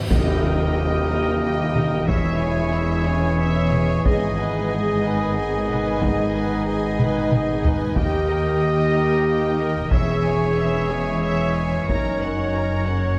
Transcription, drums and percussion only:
0.10 taiko, tam-tam
1.75 taiko mid
2.08 taiko
3.72 taiko mid
4.06 taiko
5.70 taiko mid
6.02 taiko
7.00 taiko mid
7.32 taiko mid
7.65 taiko low
7.96 taiko
9.91 taiko
11.89 taiko

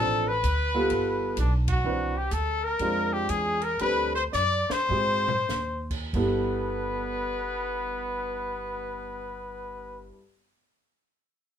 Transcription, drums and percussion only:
0.44 hi-hat pedal, ride
0.90 ride
1.37 hi-hat pedal, ride
1.68 kick, ride
2.31 hi-hat pedal, ride
2.79 ride
3.29 hi-hat pedal, ride
3.61 ride
3.79 ride
4.33 snare, hi-hat pedal
4.70 snare
4.89 floor tom
5.28 floor tom
5.49 snare, hi-hat pedal
5.91 kick, crash
6.13 kick, crash

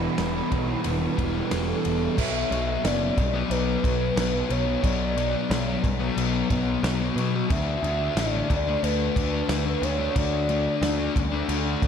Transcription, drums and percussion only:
0.18 snare, ride
0.52 kick, ride
0.84 ride
1.18 kick, ride
1.51 snare, ride
1.85 ride
2.18 kick, crash
2.52 crash
2.85 snare, crash
3.18 kick, crash
3.51 crash
3.84 kick, crash
4.17 snare, crash
4.50 crash
4.84 kick, crash
5.18 crash
5.51 snare, crash
5.84 kick, crash
6.18 crash
6.50 kick, crash
6.84 snare, crash
7.18 crash
7.50 kick, crash
7.84 crash
8.17 snare, crash
8.50 kick, crash
8.84 crash
9.16 kick, crash
9.49 snare, crash
9.83 crash
10.16 kick, crash
10.49 crash
10.83 snare, crash
11.16 kick, crash
11.49 crash
11.82 kick, crash

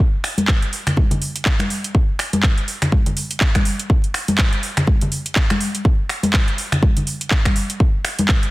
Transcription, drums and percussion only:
0.00 kick
0.24 finger snap, open hi-hat
0.38 closed hi-hat, high conga
0.48 kick, clap
0.62 closed hi-hat
0.73 open hi-hat
0.87 finger snap, closed hi-hat, low conga
0.97 kick, high conga
1.11 closed hi-hat, low conga
1.22 open hi-hat
1.36 closed hi-hat
1.45 kick, clap
1.59 finger snap, closed hi-hat, high conga
1.70 open hi-hat
1.84 closed hi-hat
1.95 kick
2.19 finger snap, open hi-hat
2.33 closed hi-hat, high conga
2.43 kick, clap
2.58 closed hi-hat
2.68 open hi-hat
2.82 finger snap, closed hi-hat, low conga
2.92 kick, high conga
3.06 closed hi-hat, low conga
3.17 open hi-hat
3.31 closed hi-hat
3.40 kick, clap
3.55 finger snap, kick, closed hi-hat, high conga
3.65 open hi-hat
3.79 closed hi-hat
3.90 kick
4.04 closed hi-hat
4.14 finger snap, open hi-hat
4.28 closed hi-hat, high conga
4.38 kick, clap
4.53 closed hi-hat
4.63 open hi-hat
4.77 finger snap, closed hi-hat, low conga
4.87 kick, high conga
5.01 closed hi-hat, low conga
5.12 open hi-hat
5.26 closed hi-hat
5.36 kick, clap
5.50 finger snap, closed hi-hat, high conga
5.61 open hi-hat
5.75 closed hi-hat
5.85 kick
6.09 finger snap, open hi-hat
6.23 closed hi-hat, high conga
6.33 kick, clap
6.48 closed hi-hat
6.58 open hi-hat
6.72 finger snap, closed hi-hat, low conga
6.83 kick, high conga
6.97 closed hi-hat, low conga
7.07 open hi-hat
7.21 closed hi-hat
7.31 kick, clap
7.45 finger snap, kick, closed hi-hat, high conga
7.56 open hi-hat
7.70 closed hi-hat
7.80 kick
8.05 finger snap, open hi-hat
8.19 closed hi-hat, high conga
8.28 kick, clap
8.43 closed hi-hat

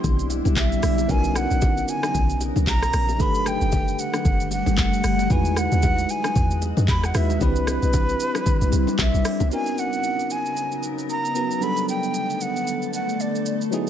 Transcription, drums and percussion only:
0.04 kick, low conga, shaker
0.19 shaker
0.30 high bongo, shaker
0.45 low bongo, shaker
0.56 kick, clap, high bongo, shaker
0.72 shaker
0.83 cross-stick, open hi-hat, shaker
0.98 high bongo, shaker
1.09 kick, low conga, shaker
1.24 shaker
1.35 cross-stick, shaker
1.51 shaker
1.61 kick, high bongo, low bongo, low conga, shaker
1.77 shaker
1.88 shaker
2.03 cross-stick, low bongo, shaker
2.14 kick, low conga, shaker
2.30 shaker
2.41 high bongo, shaker
2.56 low bongo, shaker
2.67 kick, clap, high bongo, shaker
2.82 cross-stick, shaker
2.93 cross-stick, open hi-hat, shaker
3.09 high bongo, shaker
3.19 kick, low conga, shaker
3.35 shaker
3.46 cross-stick, shaker
3.61 shaker
3.72 kick, high bongo, low bongo, low conga, shaker
3.88 shaker
3.99 shaker
4.14 cross-stick, low bongo, shaker
4.25 kick, low conga, shaker
4.40 shaker
4.51 high bongo, shaker
4.66 low bongo, shaker
4.77 kick, clap, high bongo, shaker
4.93 shaker
5.04 cross-stick, open hi-hat, shaker
5.19 high bongo, shaker
5.30 kick, low conga, shaker
5.45 shaker
5.56 cross-stick, shaker
5.72 shaker
5.82 kick, high bongo, low bongo, low conga, shaker
5.98 shaker
6.09 shaker
6.24 cross-stick, low bongo, shaker
6.35 kick, low conga, shaker
6.51 shaker
6.62 high bongo, shaker
6.77 low bongo, shaker
6.88 kick, clap, high bongo, shaker
7.03 cross-stick, shaker
7.14 cross-stick, open hi-hat, shaker
7.30 high bongo, shaker
7.41 kick, low conga, shaker
7.56 shaker
7.67 cross-stick, shaker
7.82 shaker
7.93 kick, high bongo, low bongo, low conga, shaker
8.09 shaker
8.20 shaker
8.35 cross-stick, low bongo, shaker
8.46 kick, low conga, shaker
8.61 shaker
8.72 high bongo, shaker
8.87 low bongo, shaker
8.98 kick, clap, high bongo, shaker
9.14 shaker
9.25 cross-stick, open hi-hat, shaker
9.40 high bongo, low bongo, shaker
9.51 shaker
9.66 shaker
9.78 shaker
9.93 shaker
10.03 shaker
10.19 shaker
10.30 shaker
10.46 shaker
10.57 shaker
10.72 shaker
10.83 shaker
10.98 shaker
11.09 shaker
11.25 shaker
11.35 shaker
11.51 shaker
11.62 shaker
11.77 shaker
11.89 shaker
12.03 shaker
12.14 shaker
12.30 shaker
12.41 shaker
12.56 shaker
12.67 shaker
12.82 shaker
12.93 shaker
13.09 shaker
13.20 shaker
13.35 shaker
13.46 shaker
13.61 shaker
13.72 shaker

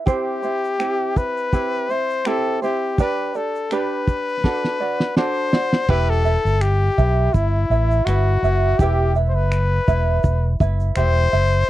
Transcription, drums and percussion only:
0.07 kick, shaker
0.43 shaker
0.64 shaker
0.80 finger snap, shaker
1.16 kick, shaker
1.37 shaker
1.52 kick, shaker
1.90 shaker
2.10 shaker
2.25 finger snap, shaker
2.63 shaker
2.98 kick, shaker
3.34 shaker
3.55 shaker
3.71 finger snap, shaker
4.07 kick, shaker
4.28 shaker
4.44 kick, snare
4.64 snare
5.00 snare
5.17 snare
5.53 snare
5.73 snare
5.88 kick, crash
6.25 shaker
6.46 shaker
6.61 finger snap, shaker
6.98 kick, shaker
7.34 kick, shaker
7.71 shaker
7.91 shaker
8.07 finger snap, shaker
8.44 shaker
8.79 kick, shaker
9.15 shaker
9.52 finger snap, shaker
9.87 kick, shaker
10.23 kick, shaker
10.60 kick, shaker
10.80 shaker
10.96 finger snap, shaker
11.33 shaker
11.52 shaker

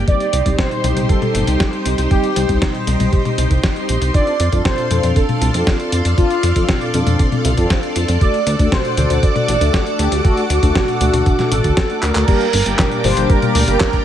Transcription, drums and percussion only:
0.08 kick, closed hi-hat
0.20 closed hi-hat
0.33 closed hi-hat
0.46 kick, closed hi-hat
0.58 kick, snare, closed hi-hat, high tom
0.71 closed hi-hat
0.84 closed hi-hat, high tom
0.97 closed hi-hat
1.09 kick, closed hi-hat
1.22 closed hi-hat, high tom
1.35 closed hi-hat
1.47 closed hi-hat
1.60 kick, snare, closed hi-hat
1.73 closed hi-hat
1.86 closed hi-hat
1.98 closed hi-hat
2.11 kick, closed hi-hat
2.24 closed hi-hat
2.36 closed hi-hat
2.49 kick, closed hi-hat
2.62 kick, snare, closed hi-hat, high tom
2.75 closed hi-hat
2.87 closed hi-hat, high tom
3.00 closed hi-hat, high tom
3.13 kick, closed hi-hat
3.25 closed hi-hat, high tom
3.38 closed hi-hat
3.51 kick, closed hi-hat
3.63 kick, snare, closed hi-hat
3.76 closed hi-hat
3.89 closed hi-hat
4.02 closed hi-hat
4.14 kick, closed hi-hat
4.27 closed hi-hat
4.40 closed hi-hat
4.53 kick, closed hi-hat
4.65 kick, snare, closed hi-hat, high tom
4.78 closed hi-hat
4.91 closed hi-hat, high tom
5.03 closed hi-hat
5.16 kick, closed hi-hat
5.29 closed hi-hat, high tom
5.42 closed hi-hat
5.54 closed hi-hat
5.67 kick, snare, closed hi-hat
5.80 closed hi-hat
5.92 closed hi-hat
6.05 closed hi-hat
6.18 kick, closed hi-hat
6.30 closed hi-hat
6.43 closed hi-hat
6.56 kick, closed hi-hat
6.69 kick, snare, closed hi-hat, high tom
6.81 closed hi-hat
6.94 closed hi-hat, high tom
7.07 closed hi-hat, high tom
7.19 kick, closed hi-hat
7.32 closed hi-hat, high tom
7.45 closed hi-hat
7.58 kick, closed hi-hat
7.70 kick, snare, closed hi-hat
7.83 closed hi-hat
7.96 closed hi-hat
8.08 closed hi-hat
8.21 kick, closed hi-hat
8.34 closed hi-hat
8.47 closed hi-hat
8.59 kick, closed hi-hat
8.72 kick, snare, closed hi-hat, high tom
8.85 closed hi-hat
8.97 closed hi-hat, high tom
9.10 closed hi-hat
9.23 kick, closed hi-hat
9.36 closed hi-hat, high tom
9.48 closed hi-hat
9.61 closed hi-hat
9.74 kick, snare, closed hi-hat
9.87 closed hi-hat
9.99 closed hi-hat
10.12 closed hi-hat
10.25 kick, closed hi-hat
10.37 closed hi-hat
10.50 closed hi-hat
10.63 kick, closed hi-hat
10.75 kick, snare, closed hi-hat, high tom
10.88 closed hi-hat
11.01 closed hi-hat, high tom
11.14 closed hi-hat, high tom
11.26 kick, closed hi-hat
11.39 snare, closed hi-hat, high tom
11.52 closed hi-hat
11.64 kick, closed hi-hat
11.77 kick, snare, closed hi-hat
11.90 closed hi-hat
12.02 clap, closed hi-hat
12.15 clap, closed hi-hat
12.28 kick, closed hi-hat, crash
12.41 closed hi-hat
12.53 open hi-hat
12.66 closed hi-hat
12.79 kick, snare, clap, closed hi-hat, high tom
12.91 closed hi-hat
13.04 open hi-hat, high tom
13.17 closed hi-hat
13.30 kick, closed hi-hat
13.42 closed hi-hat, high tom
13.55 open hi-hat
13.68 closed hi-hat
13.80 kick, snare, clap, closed hi-hat
13.93 kick, closed hi-hat

